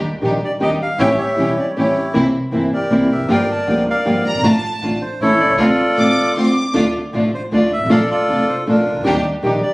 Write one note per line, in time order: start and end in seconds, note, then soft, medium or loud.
0.21 0.38 A#1 medium
0.21 0.39 D#3 medium
0.21 0.39 G3 medium
0.21 0.39 D4 medium
0.21 0.39 D4 soft
0.21 0.39 D#4 soft
0.21 0.39 G4 medium
0.45 0.52 D5 medium
0.60 0.77 D#2 medium
0.60 0.77 D#3 medium
0.60 0.77 G3 medium
0.60 0.77 D4 medium
0.60 0.77 D4 soft
0.60 0.77 D#4 soft
0.60 0.77 G4 medium
0.60 0.77 G4 soft
0.60 0.71 D#5 medium
0.82 0.99 F5 medium
0.98 1.15 A1 medium
0.98 1.07 E3 medium
0.98 1.08 G3 medium
0.98 1.15 A3 medium
0.98 1.15 C#4 medium
0.98 1.08 C#4 medium
0.98 1.08 E4 medium
0.98 1.15 G4 medium
0.98 1.17 C#5 medium
0.98 1.19 E5 medium
0.98 1.09 G5 medium
1.18 1.72 G4 medium
1.18 1.72 C#5 medium
1.18 1.59 E5 medium
1.36 1.53 E1 medium
1.36 1.54 E3 medium
1.36 1.54 G3 medium
1.36 1.54 A3 soft
1.36 1.54 C#4 medium
1.36 1.54 C#4 soft
1.36 1.54 E4 medium
1.36 1.54 G4 soft
1.59 1.67 D5 medium
1.76 1.92 A1 medium
1.76 1.93 E3 medium
1.76 1.93 G3 soft
1.76 1.93 A3 soft
1.76 1.93 C#4 medium
1.76 1.93 C#4 soft
1.76 1.94 E4 medium
1.76 2.13 E4 soft
1.76 1.93 G4 soft
1.76 2.13 G4 soft
1.76 2.04 C#5 medium
2.13 2.31 C2 medium
2.13 2.23 C3 medium
2.13 2.23 E3 medium
2.13 2.23 A#3 medium
2.13 2.31 A#3 medium
2.13 2.23 C4 medium
2.13 2.32 C4 medium
2.13 2.24 E4 medium
2.13 2.32 E4 medium
2.51 2.69 G1 medium
2.51 2.69 C3 medium
2.51 2.69 E3 medium
2.51 2.70 A#3 medium
2.51 2.69 A#3 soft
2.51 2.69 C4 medium
2.51 2.70 C4 soft
2.51 2.70 E4 medium
2.51 2.70 E4 soft
2.73 3.27 G4 medium
2.73 3.27 A#4 medium
2.73 3.08 D5 medium
2.90 3.08 C2 medium
2.90 3.08 C3 medium
2.90 3.08 E3 medium
2.90 3.08 A#3 medium
2.90 3.07 A#3 soft
2.90 3.08 C4 soft
2.90 3.08 C4 medium
2.90 3.07 E4 soft
2.90 3.08 E4 medium
3.12 3.19 E1 soft
3.12 3.29 E5 medium
3.20 3.23 F1 medium
3.20 3.28 F#1 medium
3.28 3.45 G1 medium
3.28 3.38 D3 medium
3.28 3.38 F3 medium
3.28 3.45 G3 medium
3.28 3.38 A#3 medium
3.28 3.46 A#3 medium
3.28 3.38 D4 medium
3.28 3.46 F4 medium
3.28 3.39 G4 medium
3.28 3.84 A#4 medium
3.28 3.84 D5 medium
3.28 3.50 G5 loud
3.51 3.68 A5 medium
3.67 3.83 D2 medium
3.67 3.84 D3 medium
3.67 3.85 F3 medium
3.67 3.83 G3 soft
3.67 3.83 A#3 soft
3.67 3.85 A#3 medium
3.67 3.85 D4 medium
3.67 3.83 F4 medium
3.67 3.85 G4 medium
3.67 3.78 G5 medium
3.90 4.42 A#4 medium
3.90 4.42 D5 medium
3.90 4.24 F5 medium
4.05 4.22 G1 medium
4.05 4.22 D3 medium
4.05 4.22 F3 medium
4.05 4.21 G3 medium
4.05 4.22 A#3 soft
4.05 4.23 A#3 medium
4.05 4.23 D4 medium
4.05 4.22 F4 medium
4.05 4.23 G4 medium
4.26 4.33 F#1 medium
4.26 4.43 A#5 medium
4.34 4.39 G1 medium
4.39 4.44 G#1 medium
4.39 4.52 D3 medium
4.39 4.60 A3 medium
4.43 4.60 A1 medium
4.43 4.53 A3 medium
4.43 4.60 D4 medium
4.43 4.53 D4 medium
4.43 4.60 F4 medium
4.43 4.53 F4 medium
4.43 4.93 A5 loud
4.82 4.98 A1 medium
4.82 5.00 D3 medium
4.82 4.98 A3 soft
4.82 5.00 A3 medium
4.82 4.98 D4 soft
4.82 5.00 D4 medium
4.82 4.98 F4 medium
4.82 5.00 F4 medium
5.02 5.19 C5 medium
5.20 5.36 A1 medium
5.20 5.38 E3 medium
5.20 5.37 A3 soft
5.20 5.38 A3 medium
5.20 5.37 C#4 soft
5.20 5.38 C#4 medium
5.20 5.37 E4 medium
5.20 5.57 E4 medium
5.20 5.38 E4 medium
5.20 5.57 A4 medium
5.20 5.39 C#5 loud
5.40 5.49 B1 soft
5.40 5.49 D5 loud
5.49 5.55 C2 medium
5.49 5.54 C#5 medium
5.55 5.58 C#2 medium
5.55 5.75 D2 medium
5.55 5.68 D3 medium
5.55 5.68 A3 medium
5.55 5.75 C4 medium
5.55 5.75 D4 medium
5.55 5.75 F4 medium
5.55 6.32 F4 medium
5.55 6.32 D5 medium
5.60 5.69 C4 medium
5.60 5.69 F4 medium
5.60 6.33 A4 medium
5.97 6.14 A1 medium
5.97 6.14 D3 soft
5.97 6.15 A3 medium
5.97 6.14 C4 soft
5.97 6.15 C4 medium
5.97 6.14 D4 soft
5.97 6.14 F4 soft
5.97 6.15 F4 medium
5.97 6.34 D6 medium
6.36 6.54 D3 medium
6.36 6.54 A3 medium
6.36 6.53 C4 soft
6.36 6.54 C4 medium
6.36 6.53 D4 soft
6.36 6.53 F4 medium
6.36 6.54 F4 medium
6.36 6.46 C6 medium
6.45 6.75 D6 medium
6.74 6.92 D2 medium
6.74 6.83 D3 medium
6.74 6.84 A3 medium
6.74 6.91 A3 medium
6.74 6.84 D4 loud
6.74 6.92 D4 medium
6.74 6.84 F4 medium
6.74 6.92 F4 medium
7.13 7.30 A1 medium
7.13 7.31 D3 medium
7.13 7.31 A3 medium
7.13 7.30 A3 soft
7.13 7.31 D4 medium
7.13 7.31 D4 soft
7.13 7.31 F4 medium
7.34 7.43 C5 medium
7.51 7.69 D2 medium
7.51 7.69 D3 medium
7.51 7.69 A3 medium
7.51 7.69 A3 soft
7.51 7.69 D4 medium
7.51 7.69 D4 soft
7.51 7.69 F4 medium
7.51 7.71 D5 medium
7.73 7.90 E5 loud
7.78 7.82 G1 soft
7.83 7.85 G#1 medium
7.83 7.91 A1 medium
7.90 8.07 A#1 loud
7.90 7.99 D3 medium
7.90 7.99 A3 medium
7.90 8.07 A#3 medium
7.90 7.99 D4 medium
7.90 8.07 D4 medium
7.90 7.99 F4 loud
7.90 8.07 A4 loud
7.90 8.09 A4 medium
7.90 8.10 D5 medium
7.90 8.00 F5 loud
8.11 8.64 F4 medium
8.11 8.64 A4 medium
8.11 8.50 D5 loud
8.28 8.45 F1 medium
8.28 8.45 D3 medium
8.28 8.46 A3 medium
8.28 8.45 A#3 medium
8.28 8.46 D4 soft
8.28 8.46 D4 medium
8.28 8.47 F4 medium
8.28 8.46 A4 medium
8.49 8.58 C5 medium
8.67 8.84 A#1 medium
8.67 8.84 D3 medium
8.67 8.84 A3 medium
8.67 8.84 A#3 medium
8.67 8.84 D4 medium
8.67 9.03 D4 medium
8.67 8.84 D4 soft
8.67 8.84 F4 medium
8.67 9.03 F4 medium
8.67 8.84 A4 medium
8.67 8.95 A#4 medium
8.92 8.96 C2 medium
8.97 9.00 C#2 medium
9.01 9.06 D2 medium
9.01 9.13 D#3 medium
9.01 9.14 G3 loud
9.01 9.14 D4 loud
9.01 9.14 G4 medium
9.07 9.22 D#2 loud
9.07 9.22 D4 medium
9.07 9.22 D#4 medium
9.07 9.22 G4 medium
9.43 9.60 A#1 medium
9.43 9.60 D#3 medium
9.43 9.60 G3 medium
9.43 9.61 D4 medium
9.43 9.60 D4 medium
9.43 9.60 D#4 soft
9.43 9.61 G4 medium
9.63 9.74 D5 medium